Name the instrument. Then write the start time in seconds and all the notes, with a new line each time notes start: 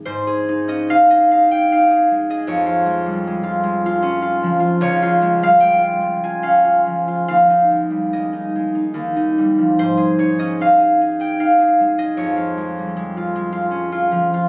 harp
Already playing: G#3 C4 D#4 G#4 D#5 G#5 D#6
0.05 G#2 C5
0.27 G#4
0.49 D#4
0.68 C#4 D#5
0.90 D#4 F5
1.10 G#4 D#5
1.31 D#4 F5
1.51 G#4 G5
1.72 D#4 F5
1.90 G#4
2.11 G#3
2.30 G#4 D#5
2.47 F2 C#5
2.66 F4
2.86 G#3
3.07 G3
3.27 G#3
3.43 F4
3.64 G#3
3.86 F4
4.02 C#4
4.22 F4
4.43 F3
4.60 F4
4.81 C#2 C#5
5.03 F4
5.21 G#3
5.43 G3 F5
5.60 G#3 G5
5.79 F4
6.00 G#3
6.24 F4 G#5
6.42 C#4 F5
6.65 F4
6.86 F3
7.08 F4
7.28 D#2 F5
7.50 D#4
7.71 G#3
7.90 G3
8.13 G#3 D#5
8.33 D#4
8.56 G#3
8.75 D#4
8.94 D#2
9.16 D#4
9.38 G3
9.58 F3
9.79 G#2 C5
9.97 G#4
10.18 D#4 C#5
10.39 C#4 D#5
10.61 D#4 F5
10.80 G#4
11.01 D#4
11.20 G#4 G5
11.40 D#4 F5
11.60 G#4
11.80 G#3
11.98 G#4 D#5
12.17 F2 C#5
12.37 F4
12.57 G#3
12.79 G3
12.97 G#3
13.17 F4
13.36 G#3
13.52 F4
13.71 C#4
13.92 F4
14.11 F3
14.34 F4